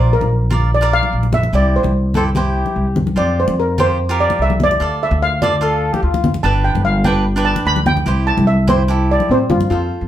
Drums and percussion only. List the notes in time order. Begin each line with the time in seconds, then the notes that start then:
0.21 high conga
0.51 low conga
1.03 high conga
1.23 high conga
1.33 low conga
1.43 high conga
1.84 high conga
2.14 low conga
2.35 low conga
2.66 high conga
2.96 low conga
3.07 high conga
3.48 high conga
3.78 low conga
4.30 high conga
4.50 high conga
4.60 low conga
4.71 high conga
5.42 low conga
5.94 high conga
6.14 high conga
6.24 low conga
6.34 high conga
6.75 high conga
7.04 low conga
7.56 high conga
7.76 high conga
7.86 low conga
7.97 high conga
8.38 high conga
8.68 low conga
9.20 high conga
9.50 low conga
9.61 high conga